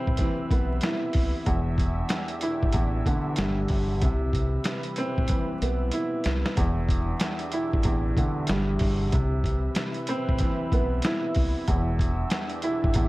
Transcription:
0.00 0.19 C3 medium
0.00 1.44 E3 medium
0.00 1.15 C4 loud
0.00 1.44 E4 medium
0.00 1.44 B4 medium
0.00 6.53 E5 medium
0.07 0.18 A1 medium
0.07 kick loud
0.17 1.46 E3 medium
0.17 kick loud
0.17 snare soft
0.17 closed hi-hat medium
0.51 0.79 B1 medium
0.51 1.47 B3 medium
0.51 kick loud
0.51 closed hi-hat medium
0.81 1.47 E4 medium
0.81 snare loud
0.81 snare medium
0.81 closed hi-hat medium
1.13 1.32 C2 loud
1.13 kick medium
1.13 open hi-hat medium
1.46 2.03 E1 loud
1.46 2.72 E2 medium
1.46 4.00 E3 medium
1.46 4.00 D4 medium
1.46 4.00 G4 medium
1.46 kick loud
1.46 closed hi-hat medium
1.78 kick medium
1.78 closed hi-hat medium
2.09 snare loud
2.09 snare medium
2.09 closed hi-hat medium
2.28 closed hi-hat medium
2.41 3.70 E4 medium
2.41 closed hi-hat medium
2.63 2.74 G1 medium
2.63 kick loud
2.72 3.02 A1 medium
2.72 4.02 E2 medium
2.72 kick loud
2.72 closed hi-hat loud
3.06 4.02 D3 medium
3.06 kick loud
3.06 closed hi-hat medium
3.36 3.66 G1 medium
3.36 4.02 G3 medium
3.36 snare loud
3.36 snare medium
3.36 closed hi-hat medium
3.68 4.02 G1 medium
3.68 kick medium
3.68 open hi-hat medium
4.01 4.58 C2 loud
4.01 5.30 C3 medium
4.01 6.55 E3 medium
4.01 6.56 G3 medium
4.01 6.55 B4 medium
4.01 kick loud
4.01 closed hi-hat medium
4.33 kick medium
4.33 closed hi-hat medium
4.64 snare loud
4.64 closed hi-hat loud
4.83 closed hi-hat medium
4.96 6.26 C4 loud
4.96 closed hi-hat medium
5.18 5.28 A1 medium
5.18 kick loud
5.28 6.57 E3 medium
5.28 kick loud
5.28 closed hi-hat medium
5.62 5.90 B1 loud
5.62 6.58 B3 medium
5.62 closed hi-hat medium
5.91 6.57 E4 medium
5.91 closed hi-hat medium
6.24 6.43 C2 loud
6.24 snare loud
6.24 closed hi-hat medium
6.46 snare medium
6.57 7.13 E1 loud
6.57 7.83 E2 medium
6.57 9.10 E3 medium
6.57 9.10 D4 medium
6.57 9.10 G4 medium
6.57 13.08 E5 medium
6.57 kick loud
6.57 closed hi-hat medium
6.89 kick medium
6.89 closed hi-hat medium
7.20 snare loud
7.20 closed hi-hat loud
7.39 closed hi-hat medium
7.52 8.81 E4 loud
7.52 closed hi-hat medium
7.73 7.85 G1 medium
7.73 kick loud
7.83 8.13 A1 medium
7.83 9.13 E2 medium
7.83 kick loud
7.83 closed hi-hat medium
8.17 9.13 D3 medium
8.17 kick loud
8.17 closed hi-hat medium
8.47 8.77 G1 medium
8.47 9.13 G3 medium
8.47 snare loud
8.47 snare medium
8.47 closed hi-hat medium
8.79 9.13 G1 medium
8.79 kick loud
8.79 open hi-hat medium
9.12 9.69 C2 loud
9.12 10.40 C3 medium
9.12 11.65 E3 medium
9.12 11.65 E4 medium
9.12 11.65 B4 medium
9.12 kick loud
9.12 closed hi-hat medium
9.44 kick medium
9.44 closed hi-hat medium
9.75 snare loud
9.75 closed hi-hat loud
9.94 closed hi-hat medium
10.07 11.36 C4 loud
10.07 closed hi-hat medium
10.29 10.39 A1 medium
10.29 kick loud
10.39 11.68 E3 medium
10.39 kick loud
10.39 snare soft
10.39 closed hi-hat medium
10.72 11.00 B1 loud
10.72 11.68 B3 medium
10.72 kick loud
10.72 closed hi-hat medium
11.02 11.68 E4 loud
11.02 snare loud
11.02 snare medium
11.02 closed hi-hat medium
11.34 11.54 C2 loud
11.34 kick medium
11.34 open hi-hat medium
11.68 12.24 E1 loud
11.68 12.94 E2 medium
11.68 13.08 E3 medium
11.68 13.08 D4 medium
11.68 13.08 G4 medium
11.68 kick loud
11.68 closed hi-hat medium
11.99 kick medium
11.99 closed hi-hat medium
12.30 snare loud
12.30 closed hi-hat loud
12.50 closed hi-hat medium
12.62 13.08 E4 loud
12.62 closed hi-hat medium
12.84 12.96 G1 medium
12.84 kick loud
12.94 13.08 A1 loud
12.94 13.08 E2 medium
12.94 kick loud
12.94 closed hi-hat medium

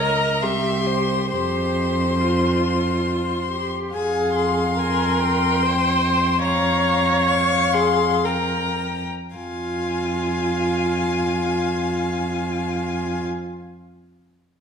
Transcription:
0.00 0.44 C#2 soft
0.00 0.45 A#4 medium
0.00 0.42 D#5 soft
0.00 0.43 A#5 soft
0.42 1.34 C2 soft
0.42 1.31 G4 medium
0.42 0.88 E5 soft
0.42 1.31 C6 soft
0.87 1.31 C5 soft
1.32 3.73 F2 soft
1.32 2.22 G4 medium
1.32 3.69 C5 soft
1.32 3.69 C6 soft
2.20 3.51 F4 soft
3.51 3.95 G4 soft
3.94 9.04 F2 soft
3.94 4.79 G#4 soft
3.94 4.80 F5 soft
3.94 4.33 G#5 soft
4.35 6.39 C6 soft
4.79 5.64 A#4 soft
4.79 5.22 G#5 soft
5.20 6.43 G5 soft
5.63 6.43 C5 medium
6.43 7.76 C#5 medium
6.43 7.28 F5 soft
6.43 7.29 A#5 soft
7.28 8.27 F5 soft
7.28 7.74 C#6 soft
7.73 8.26 G#4 soft
7.73 8.26 C6 soft
8.25 8.80 A#4 soft
8.25 9.09 G5 soft
8.25 9.09 A#5 soft
9.35 13.23 F2 soft
9.35 13.24 F4 soft
9.35 13.24 F5 soft
9.35 13.24 G#5 soft

